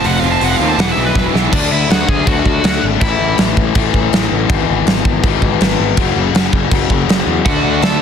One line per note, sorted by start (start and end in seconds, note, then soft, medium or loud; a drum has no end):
0.03 0.17 F1 medium
0.03 0.21 F2 loud
0.03 0.22 C3 loud
0.03 0.22 F3 medium
0.03 0.22 F3 loud
0.03 0.22 A3 loud
0.03 0.23 C4 loud
0.03 0.23 F4 loud
0.03 0.20 F#5 loud
0.03 open hi-hat medium
0.20 0.36 F1 medium
0.20 0.39 F2 medium
0.20 0.40 C3 medium
0.20 0.39 F3 medium
0.20 0.40 F3 medium
0.20 0.40 A3 medium
0.20 0.30 F5 loud
0.24 0.41 C4 loud
0.24 0.41 F4 medium
0.32 0.42 A5 loud
0.40 0.54 F1 medium
0.40 0.58 F2 medium
0.40 0.59 C3 loud
0.40 0.59 F3 loud
0.40 0.59 A3 medium
0.40 0.60 C4 loud
0.40 0.60 F4 loud
0.40 0.56 F#5 loud
0.40 open hi-hat medium
0.56 0.73 D#2 medium
0.56 0.77 F2 medium
0.56 0.77 C3 medium
0.56 0.77 F3 medium
0.56 0.67 F5 loud
0.60 0.78 F3 medium
0.60 0.78 A3 medium
0.60 0.78 C4 medium
0.60 0.78 F4 loud
0.69 0.80 A5 loud
0.78 0.91 E1 loud
0.78 0.95 E2 loud
0.78 0.96 B2 loud
0.78 0.96 E3 loud
0.78 0.96 G#3 medium
0.78 0.96 B3 medium
0.78 0.97 E4 loud
0.78 0.91 F#5 loud
0.78 snare loud
0.78 open hi-hat medium
0.91 1.03 E5 loud
0.96 1.10 B1 medium
0.96 1.13 E2 medium
0.96 1.14 B2 medium
0.96 1.14 E3 medium
0.96 1.14 E3 loud
0.96 1.14 G#3 medium
0.96 1.14 B3 medium
0.96 1.15 E4 medium
1.05 1.22 B4 loud
1.14 1.28 E1 medium
1.14 1.32 E2 loud
1.14 1.32 B2 loud
1.14 1.32 E3 loud
1.14 1.33 E3 loud
1.14 1.32 G#3 loud
1.14 1.33 B3 loud
1.14 1.33 E4 loud
1.14 kick medium
1.14 snare medium
1.33 1.47 B1 medium
1.33 1.51 E2 medium
1.33 1.51 B2 medium
1.33 1.51 E3 medium
1.33 1.52 E3 loud
1.33 1.51 G#3 medium
1.33 1.52 B3 medium
1.33 1.51 E4 medium
1.33 snare medium
1.52 1.66 D2 loud
1.52 2.24 D3 loud
1.52 2.27 A3 loud
1.52 1.70 D4 medium
1.52 2.27 D4 loud
1.52 1.72 D5 medium
1.52 kick loud
1.52 crash loud
1.52 crash medium
1.71 1.85 D2 medium
1.71 1.89 E4 medium
1.71 1.90 E5 loud
1.90 2.03 D2 medium
1.90 2.07 F#4 medium
1.90 2.09 F#5 loud
1.90 snare loud
1.90 crash medium
2.09 2.22 D2 medium
2.09 2.26 G#4 medium
2.09 2.27 G#5 medium
2.09 kick medium
2.25 2.41 D2 medium
2.25 2.99 D3 medium
2.25 3.00 A3 medium
2.25 3.01 D4 medium
2.25 2.79 F#4 medium
2.25 2.83 F#5 loud
2.25 kick loud
2.25 crash medium
2.46 2.59 D2 loud
2.46 kick medium
2.64 2.77 D2 loud
2.64 snare loud
2.64 crash medium
2.83 2.96 G#1 medium
2.99 3.15 A1 loud
2.99 3.73 A2 loud
2.99 3.76 E3 loud
2.99 3.75 A3 loud
2.99 3.36 E4 medium
2.99 3.36 E5 medium
2.99 kick loud
2.99 crash medium
3.20 3.33 A1 medium
3.38 3.52 A1 medium
3.38 snare loud
3.38 crash medium
3.57 3.70 A1 medium
3.57 kick medium
3.74 3.89 A1 loud
3.74 4.48 A2 medium
3.74 4.49 E3 medium
3.74 4.50 A3 medium
3.74 kick loud
3.74 crash medium
3.94 4.07 A1 loud
3.94 kick medium
4.13 4.26 A1 loud
4.13 snare loud
4.13 crash medium
4.32 4.45 A1 medium
4.48 4.63 G#1 loud
4.48 5.21 E2 loud
4.48 5.23 B2 loud
4.48 5.24 E3 loud
4.48 kick loud
4.48 crash medium
4.69 4.82 G#1 medium
4.87 5.00 G#1 loud
4.87 snare loud
4.87 crash medium
5.05 5.19 G#1 medium
5.05 kick medium
5.23 5.37 G#1 loud
5.23 5.96 E2 medium
5.23 5.97 B2 loud
5.23 5.98 E3 loud
5.23 kick loud
5.23 crash medium
5.42 5.55 G#1 loud
5.42 kick medium
5.61 5.74 G#1 loud
5.61 snare loud
5.61 crash medium
5.79 5.93 G#1 medium
5.96 6.11 F#1 medium
5.96 6.69 F#2 loud
5.96 6.71 C#3 loud
5.96 6.73 F#3 loud
5.96 kick loud
5.96 crash medium
6.16 6.29 F#1 medium
6.34 6.48 F#1 medium
6.34 snare loud
6.34 crash medium
6.53 6.66 F#1 medium
6.53 kick medium
6.71 6.85 F#1 medium
6.71 7.44 F#2 medium
6.71 7.44 C#3 medium
6.71 7.46 F#3 medium
6.71 kick loud
6.71 crash medium
6.90 7.04 F#1 loud
6.90 kick medium
7.08 7.22 F#1 loud
7.08 snare loud
7.08 crash medium
7.27 7.40 E2 medium
7.45 7.59 D2 loud
7.45 8.02 D3 medium
7.45 8.02 D3 loud
7.45 8.02 A3 medium
7.45 8.02 A3 loud
7.45 8.02 D4 loud
7.45 7.80 F#4 medium
7.45 8.02 F#4 loud
7.45 7.84 F#5 loud
7.45 kick loud
7.45 crash medium
7.64 7.78 D2 medium
7.82 7.96 D2 medium
7.82 8.01 A4 medium
7.82 8.01 A5 medium
7.82 snare loud
7.82 crash medium